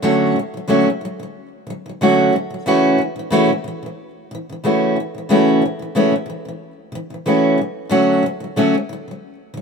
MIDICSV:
0, 0, Header, 1, 2, 480
1, 0, Start_track
1, 0, Key_signature, 2, "major"
1, 0, Tempo, 654308
1, 38, Time_signature, 4, 2, 24, 8
1, 7054, End_track
2, 0, Start_track
2, 0, Title_t, "Steel-string acoustic guitar"
2, 0, Program_c, 0, 25
2, 18, Note_on_c, 0, 50, 78
2, 25, Note_on_c, 0, 54, 77
2, 26, Note_on_c, 0, 57, 76
2, 30, Note_on_c, 0, 61, 69
2, 34, Note_on_c, 0, 66, 79
2, 254, Note_off_c, 0, 50, 0
2, 263, Note_on_c, 0, 50, 60
2, 272, Note_off_c, 0, 54, 0
2, 272, Note_off_c, 0, 57, 0
2, 274, Note_off_c, 0, 61, 0
2, 276, Note_off_c, 0, 66, 0
2, 289, Note_on_c, 0, 54, 68
2, 385, Note_off_c, 0, 50, 0
2, 394, Note_on_c, 0, 50, 48
2, 410, Note_off_c, 0, 54, 0
2, 419, Note_on_c, 0, 54, 53
2, 487, Note_off_c, 0, 50, 0
2, 493, Note_off_c, 0, 54, 0
2, 495, Note_on_c, 0, 50, 71
2, 501, Note_on_c, 0, 54, 71
2, 506, Note_on_c, 0, 57, 75
2, 512, Note_on_c, 0, 61, 86
2, 513, Note_on_c, 0, 66, 76
2, 625, Note_off_c, 0, 50, 0
2, 634, Note_on_c, 0, 50, 41
2, 642, Note_off_c, 0, 54, 0
2, 644, Note_off_c, 0, 57, 0
2, 647, Note_off_c, 0, 61, 0
2, 647, Note_off_c, 0, 66, 0
2, 733, Note_off_c, 0, 50, 0
2, 742, Note_on_c, 0, 50, 50
2, 770, Note_on_c, 0, 54, 70
2, 868, Note_off_c, 0, 50, 0
2, 877, Note_on_c, 0, 50, 44
2, 892, Note_off_c, 0, 54, 0
2, 901, Note_on_c, 0, 54, 50
2, 1070, Note_off_c, 0, 50, 0
2, 1083, Note_off_c, 0, 54, 0
2, 1222, Note_on_c, 0, 50, 55
2, 1248, Note_on_c, 0, 54, 72
2, 1354, Note_off_c, 0, 50, 0
2, 1363, Note_on_c, 0, 50, 50
2, 1375, Note_off_c, 0, 54, 0
2, 1389, Note_on_c, 0, 54, 50
2, 1466, Note_off_c, 0, 50, 0
2, 1473, Note_off_c, 0, 54, 0
2, 1474, Note_on_c, 0, 50, 72
2, 1480, Note_on_c, 0, 57, 74
2, 1481, Note_on_c, 0, 54, 69
2, 1487, Note_on_c, 0, 61, 76
2, 1491, Note_on_c, 0, 66, 88
2, 1698, Note_off_c, 0, 50, 0
2, 1719, Note_off_c, 0, 54, 0
2, 1719, Note_off_c, 0, 57, 0
2, 1722, Note_off_c, 0, 61, 0
2, 1724, Note_off_c, 0, 66, 0
2, 1730, Note_on_c, 0, 54, 61
2, 1837, Note_on_c, 0, 50, 46
2, 1856, Note_off_c, 0, 54, 0
2, 1864, Note_on_c, 0, 54, 47
2, 1947, Note_off_c, 0, 50, 0
2, 1950, Note_on_c, 0, 49, 72
2, 1954, Note_off_c, 0, 54, 0
2, 1957, Note_on_c, 0, 52, 83
2, 1961, Note_on_c, 0, 57, 83
2, 1964, Note_on_c, 0, 61, 83
2, 1966, Note_on_c, 0, 66, 88
2, 2180, Note_off_c, 0, 49, 0
2, 2189, Note_on_c, 0, 49, 62
2, 2197, Note_off_c, 0, 52, 0
2, 2199, Note_off_c, 0, 57, 0
2, 2201, Note_off_c, 0, 61, 0
2, 2202, Note_off_c, 0, 66, 0
2, 2211, Note_on_c, 0, 52, 55
2, 2307, Note_off_c, 0, 49, 0
2, 2316, Note_on_c, 0, 49, 53
2, 2333, Note_off_c, 0, 52, 0
2, 2342, Note_on_c, 0, 52, 60
2, 2416, Note_off_c, 0, 49, 0
2, 2424, Note_off_c, 0, 52, 0
2, 2425, Note_on_c, 0, 49, 76
2, 2433, Note_on_c, 0, 52, 82
2, 2434, Note_on_c, 0, 57, 88
2, 2440, Note_on_c, 0, 61, 92
2, 2443, Note_on_c, 0, 66, 78
2, 2551, Note_off_c, 0, 49, 0
2, 2560, Note_on_c, 0, 49, 44
2, 2567, Note_off_c, 0, 52, 0
2, 2568, Note_off_c, 0, 57, 0
2, 2571, Note_off_c, 0, 61, 0
2, 2572, Note_off_c, 0, 66, 0
2, 2586, Note_on_c, 0, 52, 49
2, 2662, Note_off_c, 0, 49, 0
2, 2671, Note_on_c, 0, 49, 53
2, 2686, Note_off_c, 0, 52, 0
2, 2697, Note_on_c, 0, 52, 61
2, 2798, Note_off_c, 0, 49, 0
2, 2807, Note_on_c, 0, 49, 43
2, 2819, Note_off_c, 0, 52, 0
2, 2832, Note_on_c, 0, 52, 50
2, 2996, Note_off_c, 0, 49, 0
2, 3008, Note_off_c, 0, 52, 0
2, 3162, Note_on_c, 0, 49, 57
2, 3188, Note_on_c, 0, 52, 69
2, 3289, Note_off_c, 0, 49, 0
2, 3297, Note_on_c, 0, 49, 47
2, 3305, Note_off_c, 0, 52, 0
2, 3319, Note_on_c, 0, 52, 51
2, 3392, Note_off_c, 0, 49, 0
2, 3399, Note_off_c, 0, 52, 0
2, 3401, Note_on_c, 0, 49, 68
2, 3408, Note_on_c, 0, 52, 68
2, 3408, Note_on_c, 0, 57, 76
2, 3414, Note_on_c, 0, 61, 80
2, 3418, Note_on_c, 0, 66, 74
2, 3632, Note_off_c, 0, 49, 0
2, 3641, Note_on_c, 0, 49, 51
2, 3643, Note_off_c, 0, 52, 0
2, 3643, Note_off_c, 0, 57, 0
2, 3646, Note_off_c, 0, 61, 0
2, 3648, Note_off_c, 0, 66, 0
2, 3765, Note_off_c, 0, 49, 0
2, 3774, Note_on_c, 0, 49, 41
2, 3800, Note_on_c, 0, 52, 51
2, 3872, Note_off_c, 0, 49, 0
2, 3880, Note_off_c, 0, 52, 0
2, 3881, Note_on_c, 0, 49, 74
2, 3889, Note_on_c, 0, 52, 81
2, 3892, Note_on_c, 0, 57, 79
2, 3896, Note_on_c, 0, 61, 78
2, 3899, Note_on_c, 0, 66, 84
2, 4111, Note_off_c, 0, 49, 0
2, 4120, Note_on_c, 0, 49, 58
2, 4124, Note_off_c, 0, 52, 0
2, 4125, Note_off_c, 0, 57, 0
2, 4127, Note_off_c, 0, 61, 0
2, 4129, Note_off_c, 0, 66, 0
2, 4148, Note_on_c, 0, 52, 56
2, 4240, Note_off_c, 0, 49, 0
2, 4249, Note_on_c, 0, 49, 46
2, 4263, Note_off_c, 0, 52, 0
2, 4271, Note_on_c, 0, 52, 58
2, 4355, Note_off_c, 0, 49, 0
2, 4361, Note_off_c, 0, 52, 0
2, 4364, Note_on_c, 0, 49, 75
2, 4370, Note_on_c, 0, 52, 73
2, 4373, Note_on_c, 0, 57, 73
2, 4376, Note_on_c, 0, 61, 83
2, 4380, Note_on_c, 0, 66, 77
2, 4481, Note_off_c, 0, 49, 0
2, 4490, Note_on_c, 0, 49, 42
2, 4496, Note_off_c, 0, 52, 0
2, 4498, Note_off_c, 0, 57, 0
2, 4500, Note_off_c, 0, 61, 0
2, 4502, Note_off_c, 0, 66, 0
2, 4516, Note_on_c, 0, 52, 50
2, 4582, Note_off_c, 0, 49, 0
2, 4590, Note_on_c, 0, 49, 54
2, 4611, Note_off_c, 0, 52, 0
2, 4619, Note_on_c, 0, 52, 61
2, 4724, Note_off_c, 0, 49, 0
2, 4733, Note_on_c, 0, 49, 40
2, 4741, Note_off_c, 0, 52, 0
2, 4757, Note_on_c, 0, 52, 51
2, 4919, Note_off_c, 0, 49, 0
2, 4931, Note_off_c, 0, 52, 0
2, 5076, Note_on_c, 0, 49, 59
2, 5100, Note_on_c, 0, 52, 73
2, 5202, Note_off_c, 0, 49, 0
2, 5211, Note_on_c, 0, 49, 45
2, 5222, Note_off_c, 0, 52, 0
2, 5238, Note_on_c, 0, 52, 46
2, 5314, Note_off_c, 0, 49, 0
2, 5316, Note_off_c, 0, 52, 0
2, 5323, Note_on_c, 0, 49, 71
2, 5325, Note_on_c, 0, 52, 75
2, 5330, Note_on_c, 0, 57, 69
2, 5336, Note_on_c, 0, 61, 77
2, 5340, Note_on_c, 0, 66, 76
2, 5556, Note_off_c, 0, 49, 0
2, 5559, Note_on_c, 0, 50, 50
2, 5562, Note_off_c, 0, 52, 0
2, 5565, Note_off_c, 0, 57, 0
2, 5568, Note_off_c, 0, 61, 0
2, 5570, Note_off_c, 0, 66, 0
2, 5585, Note_on_c, 0, 54, 59
2, 5756, Note_off_c, 0, 50, 0
2, 5769, Note_off_c, 0, 54, 0
2, 5791, Note_on_c, 0, 50, 82
2, 5799, Note_on_c, 0, 54, 81
2, 5801, Note_on_c, 0, 57, 78
2, 5807, Note_on_c, 0, 61, 87
2, 5808, Note_on_c, 0, 66, 73
2, 6026, Note_off_c, 0, 50, 0
2, 6035, Note_on_c, 0, 50, 58
2, 6040, Note_off_c, 0, 54, 0
2, 6041, Note_off_c, 0, 57, 0
2, 6043, Note_off_c, 0, 61, 0
2, 6044, Note_off_c, 0, 66, 0
2, 6060, Note_on_c, 0, 54, 68
2, 6156, Note_off_c, 0, 50, 0
2, 6165, Note_on_c, 0, 50, 51
2, 6182, Note_off_c, 0, 54, 0
2, 6191, Note_on_c, 0, 54, 49
2, 6273, Note_off_c, 0, 50, 0
2, 6278, Note_off_c, 0, 54, 0
2, 6281, Note_on_c, 0, 50, 69
2, 6287, Note_on_c, 0, 54, 84
2, 6289, Note_on_c, 0, 57, 84
2, 6294, Note_on_c, 0, 61, 83
2, 6300, Note_on_c, 0, 66, 83
2, 6406, Note_off_c, 0, 50, 0
2, 6415, Note_on_c, 0, 50, 44
2, 6416, Note_off_c, 0, 54, 0
2, 6417, Note_off_c, 0, 57, 0
2, 6419, Note_off_c, 0, 61, 0
2, 6422, Note_off_c, 0, 66, 0
2, 6438, Note_on_c, 0, 54, 54
2, 6514, Note_off_c, 0, 50, 0
2, 6523, Note_on_c, 0, 50, 57
2, 6533, Note_off_c, 0, 54, 0
2, 6549, Note_on_c, 0, 54, 59
2, 6650, Note_off_c, 0, 50, 0
2, 6659, Note_on_c, 0, 50, 38
2, 6667, Note_off_c, 0, 54, 0
2, 6684, Note_on_c, 0, 54, 45
2, 6843, Note_off_c, 0, 50, 0
2, 6856, Note_off_c, 0, 54, 0
2, 6996, Note_on_c, 0, 50, 61
2, 7022, Note_on_c, 0, 54, 62
2, 7054, Note_off_c, 0, 50, 0
2, 7054, Note_off_c, 0, 54, 0
2, 7054, End_track
0, 0, End_of_file